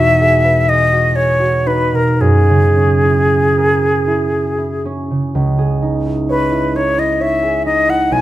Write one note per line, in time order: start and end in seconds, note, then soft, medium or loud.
0.00 2.26 E2 medium
0.00 1.92 B2 soft
0.00 1.65 D#4 soft
0.00 0.91 F#4 soft
0.00 2.26 D#5 medium
0.00 0.71 E5 medium
0.00 2.04 F#5 soft
0.21 0.67 G#4 soft
0.44 2.25 B4 soft
0.68 1.14 G#4 soft
0.68 1.17 D#5 medium
0.92 1.39 F#4 soft
1.16 3.29 G#4 soft
1.16 1.69 C#5 medium
1.40 5.30 F#4 soft
1.66 2.25 D#4 soft
1.66 1.97 B4 medium
1.93 2.25 B2 soft
1.93 2.22 A#4 medium
2.21 5.40 F#2 soft
2.21 4.86 G#4 medium
2.50 5.10 C#3 soft
2.76 4.84 C#4 soft
3.04 4.06 E4 soft
3.31 3.81 G#4 soft
3.57 5.40 A#4 soft
3.82 4.32 G#4 soft
4.08 4.57 E4 soft
4.33 5.57 G#4 soft
4.58 6.05 E4 soft
4.85 8.21 C#4 soft
5.11 5.40 C#3 soft
5.35 8.14 C#2 medium
5.59 7.42 G#4 soft
5.82 6.74 D#4 soft
6.06 6.51 E4 soft
6.29 6.78 B4 medium
6.29 7.19 C#5 soft
6.52 6.97 E4 soft
6.75 7.14 D#4 soft
6.75 7.01 C#5 medium
6.98 7.87 E4 soft
6.98 7.23 D#5 medium
7.20 8.21 C#5 soft
7.20 7.65 E5 medium
7.43 8.15 G#4 soft
7.66 8.21 D#4 soft
7.66 7.91 D#5 medium
7.88 8.15 E4 soft
7.88 8.14 F#5 medium
8.11 8.21 B1 medium
8.11 8.21 G#5 medium